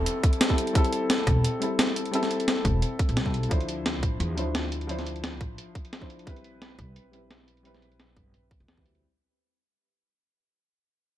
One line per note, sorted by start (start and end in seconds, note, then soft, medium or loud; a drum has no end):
0.00 0.49 G3 medium
0.00 0.50 C4 medium
0.00 0.50 E4 medium
0.00 0.51 A4 loud
0.00 downlifter medium
0.06 closed hi-hat medium
0.24 kick loud
0.24 closed hi-hat medium
0.33 closed hi-hat soft
0.41 snare loud
0.41 closed hi-hat medium
0.49 0.54 G3 medium
0.49 0.55 C4 medium
0.49 0.55 E4 medium
0.49 0.55 A4 medium
0.49 kick medium
0.58 closed hi-hat medium
0.67 closed hi-hat soft
0.73 1.58 G3 medium
0.73 1.59 C4 medium
0.73 1.60 E4 medium
0.73 1.60 A4 loud
0.73 kick loud
0.73 closed hi-hat medium
0.84 closed hi-hat soft
0.93 closed hi-hat medium
1.10 snare loud
1.10 closed hi-hat medium
1.27 1.43 E1 loud
1.27 kick loud
1.27 closed hi-hat medium
1.45 closed hi-hat medium
1.60 2.10 G3 medium
1.60 2.11 C4 medium
1.60 2.12 E4 medium
1.60 2.12 A4 medium
1.60 closed hi-hat medium
1.79 snare loud
1.79 closed hi-hat medium
1.96 closed hi-hat medium
2.06 closed hi-hat soft
2.11 3.23 G3 medium
2.11 3.24 C4 medium
2.11 3.24 E4 medium
2.11 3.25 A4 loud
2.11 closed hi-hat medium
2.23 snare soft
2.23 closed hi-hat soft
2.31 closed hi-hat medium
2.40 closed hi-hat soft
2.48 snare loud
2.48 closed hi-hat medium
2.65 2.80 E1 loud
2.65 kick loud
2.65 closed hi-hat medium
2.82 closed hi-hat medium
2.99 kick loud
2.99 closed hi-hat medium
3.09 3.17 A1 medium
3.09 closed hi-hat soft
3.17 3.34 C2 medium
3.17 snare loud
3.17 closed hi-hat medium
3.25 3.30 G3 medium
3.25 3.30 C4 medium
3.25 3.31 E4 medium
3.25 3.31 A4 medium
3.25 kick medium
3.34 3.49 B1 medium
3.34 closed hi-hat medium
3.43 closed hi-hat soft
3.49 4.03 D2 medium
3.49 4.34 F3 medium
3.49 4.35 D4 medium
3.49 4.36 E4 medium
3.49 4.36 C5 loud
3.49 kick loud
3.49 closed hi-hat medium
3.61 closed hi-hat soft
3.69 closed hi-hat medium
3.86 snare loud
3.86 closed hi-hat medium
4.03 4.18 A1 loud
4.03 kick loud
4.03 closed hi-hat medium
4.20 4.37 E2 medium
4.20 closed hi-hat medium
4.35 5.41 D2 medium
4.35 4.86 F3 medium
4.35 4.87 D4 medium
4.35 4.87 E4 medium
4.35 4.88 C5 medium
4.35 closed hi-hat medium
4.55 snare loud
4.55 closed hi-hat medium
4.72 closed hi-hat medium
4.81 closed hi-hat soft
4.87 5.99 F3 medium
4.87 6.00 D4 medium
4.87 6.00 E4 medium
4.87 6.01 C5 loud
4.87 closed hi-hat medium
4.99 snare soft
4.99 closed hi-hat soft
5.06 closed hi-hat medium
5.16 closed hi-hat soft
5.24 snare loud
5.24 closed hi-hat medium
5.41 5.56 A1 loud
5.41 kick medium
5.41 closed hi-hat medium
5.58 closed hi-hat medium
5.75 kick loud
5.75 closed hi-hat medium
5.85 closed hi-hat soft
5.93 snare loud
5.93 closed hi-hat medium
6.01 6.06 F3 medium
6.01 6.06 D4 medium
6.01 6.07 E4 medium
6.01 6.07 C5 medium
6.01 kick medium
6.10 closed hi-hat medium
6.19 closed hi-hat soft
6.25 7.10 G3 medium
6.25 7.11 C4 medium
6.25 7.12 E4 medium
6.25 7.12 B4 loud
6.25 kick loud
6.25 closed hi-hat medium
6.36 closed hi-hat soft
6.44 closed hi-hat medium
6.62 snare loud
6.62 closed hi-hat medium
6.79 6.94 C2 loud
6.79 kick medium
6.79 closed hi-hat medium
6.96 closed hi-hat medium
7.11 7.62 G3 medium
7.11 7.63 C4 medium
7.11 7.63 E4 medium
7.11 7.64 B4 medium
7.11 closed hi-hat medium
7.31 snare loud
7.31 closed hi-hat medium
7.48 closed hi-hat medium
7.57 closed hi-hat soft
7.63 8.75 G3 medium
7.63 8.75 C4 medium
7.63 8.76 E4 medium
7.63 8.77 B4 loud
7.63 closed hi-hat medium
7.74 snare soft
7.74 closed hi-hat soft
7.82 closed hi-hat medium
7.92 closed hi-hat soft
8.00 snare loud
8.00 closed hi-hat medium
8.16 8.32 G1 loud
8.16 kick medium
8.16 closed hi-hat medium
8.34 closed hi-hat medium
8.51 kick loud
8.51 closed hi-hat medium
8.60 8.68 C2 medium
8.60 closed hi-hat soft
8.68 8.86 E2 medium
8.68 snare loud
8.68 closed hi-hat medium
8.77 8.82 G3 medium
8.77 8.82 C4 medium
8.77 8.83 E4 medium
8.77 8.83 B4 medium
8.77 kick medium
8.86 9.01 D2 medium
8.86 closed hi-hat medium
8.95 closed hi-hat soft